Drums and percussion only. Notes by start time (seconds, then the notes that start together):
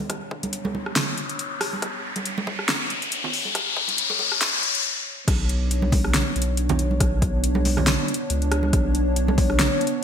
0.10 kick, cross-stick, closed hi-hat
0.31 kick
0.43 closed hi-hat, high conga
0.53 closed hi-hat
0.65 high conga
0.75 high conga
0.86 cross-stick
0.96 snare, closed hi-hat
1.18 closed hi-hat
1.29 closed hi-hat
1.39 closed hi-hat
1.61 cross-stick, open hi-hat
1.73 high conga
1.82 kick, cross-stick, closed hi-hat
2.16 closed hi-hat, high conga
2.25 closed hi-hat
2.38 high conga
2.47 kick, high conga
2.59 cross-stick
2.69 snare, closed hi-hat
2.90 closed hi-hat
3.02 closed hi-hat
3.12 closed hi-hat
3.24 low conga
3.33 open hi-hat
3.45 high conga
3.55 kick, cross-stick, closed hi-hat
3.77 kick
3.88 closed hi-hat, high conga
3.98 closed hi-hat
4.10 high conga
4.19 high conga
4.32 cross-stick
4.41 snare, closed hi-hat
4.63 closed hi-hat
4.75 closed hi-hat
5.28 kick, cross-stick, closed hi-hat, crash
5.49 closed hi-hat
5.71 closed hi-hat
5.82 high conga
5.92 kick, open hi-hat, high conga
6.04 cross-stick
6.14 snare, closed hi-hat
6.36 closed hi-hat
6.42 closed hi-hat
6.57 closed hi-hat
6.69 closed hi-hat, low conga
6.79 closed hi-hat
6.91 high conga
7.00 kick, cross-stick, closed hi-hat
7.22 kick, closed hi-hat
7.44 closed hi-hat
7.55 high conga
7.65 open hi-hat, high conga
7.77 cross-stick, low conga
7.87 snare, closed hi-hat
8.08 closed hi-hat
8.14 closed hi-hat
8.30 closed hi-hat
8.42 closed hi-hat
8.52 cross-stick, closed hi-hat
8.63 high conga
8.73 kick, cross-stick, closed hi-hat
8.95 closed hi-hat
9.16 closed hi-hat
9.28 high conga
9.38 kick, open hi-hat, high conga
9.50 cross-stick
9.59 snare, closed hi-hat
9.81 closed hi-hat
9.87 closed hi-hat